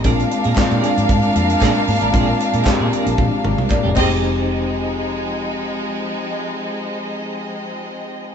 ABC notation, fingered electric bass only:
X:1
M:4/4
L:1/16
Q:1/4=115
K:Fdor
V:1 name="Fingered electric bass" clef=bass
B,,,2 z B,, z B,, z A,, A,,2 F,,2 B,, z A,, =A,,, | B,,,2 z B,, z B,, z B,,, B,,, z A,,, C,, z F,,, F,,,2- | F,,,16- | F,,,16 |]